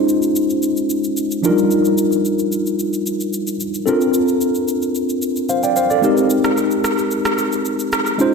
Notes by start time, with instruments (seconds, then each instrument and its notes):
Already playing: tine electric piano G#3 C#4 D#4 F4 C5
0.09 shaker
0.23 shaker
0.36 shaker
0.50 shaker
0.63 shaker
0.77 shaker
0.90 shaker
1.04 shaker
1.17 shaker
1.31 shaker
1.43 tine electric piano F3 D4 D#4 F4 A#4, shaker
1.49 tine electric piano G3
1.58 shaker
1.71 shaker
1.85 shaker
1.98 shaker
2.12 shaker
2.25 shaker
2.39 shaker
2.52 shaker
2.67 shaker
2.79 shaker
2.94 shaker
3.06 shaker
3.21 shaker
3.33 shaker
3.47 shaker
3.60 shaker
3.74 shaker
3.86 tine electric piano C4 D4 F4 A4 A#4, shaker
4.01 shaker
4.14 shaker
4.28 shaker
4.41 shaker
4.55 shaker
4.68 shaker
4.82 shaker
4.95 shaker
5.09 shaker
5.22 shaker
5.36 shaker
5.49 tine electric piano C5 F5, shaker
5.63 tine electric piano D5 G5, shaker
5.76 tine electric piano C5 F5, shaker
5.90 tine electric piano A4 D5, shaker
6.02 tine electric piano G#3 C4 D#4 G4 A#4, shaker
6.18 shaker
6.30 shaker
6.44 cross-stick, shaker
6.57 shaker
6.71 shaker
6.84 cross-stick, shaker
6.99 shaker
7.11 shaker
7.25 cross-stick, shaker
7.38 shaker
7.52 shaker
7.65 shaker
7.80 shaker
7.92 cross-stick, shaker
8.07 shaker
8.18 tine electric piano G#3 C#4 D#4 F4 C5, shaker